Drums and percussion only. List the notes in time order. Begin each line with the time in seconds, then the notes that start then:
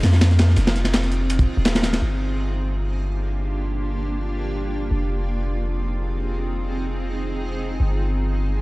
0.03 snare, closed hi-hat, ride
0.13 snare
0.21 snare, closed hi-hat, ride
0.31 snare, closed hi-hat
0.39 snare, closed hi-hat, ride
0.49 snare
0.56 snare, closed hi-hat, ride
0.67 snare, ride
0.76 snare, closed hi-hat
0.85 snare, closed hi-hat, ride
0.94 snare, closed hi-hat, ride
1.03 snare, closed hi-hat
1.12 closed hi-hat
1.30 closed hi-hat, ride
1.39 kick, closed hi-hat
1.65 snare, closed hi-hat, ride
1.75 snare, ride
1.83 snare, closed hi-hat, ride
1.93 snare, ride